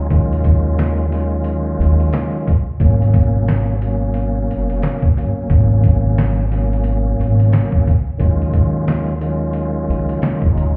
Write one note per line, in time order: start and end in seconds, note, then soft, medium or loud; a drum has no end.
0.10 1.75 D#2 loud
0.10 1.05 D#3 medium
0.10 1.06 F#3 medium
0.10 1.06 G#3 medium
0.10 1.06 C#4 medium
0.10 1.06 F4 loud
0.10 kick loud
0.10 closed hi-hat medium
0.33 closed hi-hat medium
0.44 kick medium
0.44 closed hi-hat medium
0.79 snare loud
0.79 clap medium
0.79 closed hi-hat medium
1.09 2.51 D#3 medium
1.09 2.52 F#3 medium
1.09 2.52 G#3 medium
1.09 2.52 C#4 medium
1.09 2.53 F4 loud
1.09 snare soft
1.09 closed hi-hat medium
1.44 closed hi-hat medium
1.80 2.08 D#2 medium
1.80 closed hi-hat medium
2.00 closed hi-hat medium
2.13 snare loud
2.13 clap medium
2.13 closed hi-hat medium
2.48 kick medium
2.48 closed hi-hat medium
2.79 4.50 G#1 loud
2.79 3.75 B2 medium
2.79 3.75 F#3 medium
2.79 3.76 A#3 medium
2.79 3.76 C#4 loud
2.79 kick loud
2.79 closed hi-hat medium
3.02 closed hi-hat medium
3.14 kick medium
3.14 closed hi-hat medium
3.48 snare loud
3.48 clap medium
3.48 closed hi-hat medium
3.82 5.08 B2 medium
3.82 5.09 F#3 medium
3.82 5.09 A#3 medium
3.82 5.09 C#4 loud
3.82 closed hi-hat medium
4.14 closed hi-hat medium
4.50 4.78 F#1 medium
4.50 closed hi-hat medium
4.70 closed hi-hat medium
4.83 snare loud
4.83 clap medium
4.83 closed hi-hat medium
5.03 kick medium
5.17 5.45 G1 medium
5.17 5.47 B2 medium
5.17 5.48 F#3 medium
5.17 5.49 A#3 medium
5.17 5.49 C#4 medium
5.17 closed hi-hat medium
5.48 7.15 G#1 loud
5.48 6.44 B2 loud
5.48 6.45 F#3 medium
5.48 6.45 A#3 medium
5.48 6.46 C#4 loud
5.48 kick loud
5.48 closed hi-hat medium
5.84 kick medium
5.84 closed hi-hat medium
6.18 snare loud
6.18 clap medium
6.18 closed hi-hat medium
6.51 7.92 B2 medium
6.51 7.92 F#3 medium
6.51 7.92 A#3 medium
6.51 7.93 C#4 loud
6.51 snare soft
6.51 closed hi-hat medium
6.73 closed hi-hat medium
6.84 closed hi-hat medium
7.19 7.47 G#1 medium
7.19 closed hi-hat medium
7.40 closed hi-hat medium
7.53 snare loud
7.53 clap medium
7.53 closed hi-hat medium
7.72 kick medium
7.87 kick medium
7.87 closed hi-hat medium
8.18 9.84 D#2 loud
8.18 9.14 D#3 medium
8.18 9.14 F#3 medium
8.18 9.15 G#3 medium
8.18 9.15 C#4 medium
8.18 9.15 F4 loud
8.18 kick loud
8.18 closed hi-hat medium
8.42 closed hi-hat medium
8.53 kick medium
8.53 closed hi-hat medium
8.88 snare loud
8.88 clap medium
8.88 closed hi-hat medium
9.20 10.47 D#3 medium
9.20 10.48 F#3 medium
9.20 10.48 G#3 medium
9.20 10.48 C#4 medium
9.20 10.48 F4 loud
9.20 closed hi-hat medium
9.53 closed hi-hat medium
9.89 10.17 C#2 medium
9.89 closed hi-hat medium
10.09 closed hi-hat medium
10.22 snare loud
10.22 clap medium
10.22 closed hi-hat medium
10.42 kick medium
10.52 10.77 F#3 medium
10.52 10.77 G#3 medium
10.52 10.77 C#4 medium
10.52 10.77 D#4 medium
10.52 10.77 F4 medium
10.56 10.77 D2 medium
10.56 closed hi-hat medium